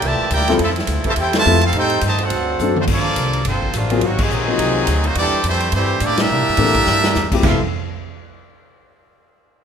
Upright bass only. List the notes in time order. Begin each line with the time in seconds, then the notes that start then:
0.02 C2
0.20 muted upright bass stroke
0.31 D2
0.59 F2
0.88 D2
1.05 muted upright bass stroke
1.17 E2
1.46 F2
1.73 A2
2.02 G2
2.31 D2
2.60 F#2
2.87 G2
3.16 C2
3.45 G1
3.73 A1
4.02 G#1
4.30 A#1
4.59 C2
4.87 D2
5.15 E2
5.33 muted upright bass stroke
5.44 F2
5.72 G2
6.01 A2
6.30 C3
6.40 A#2
6.49 G2
6.58 A2
6.87 G2
7.16 E2
7.43 F1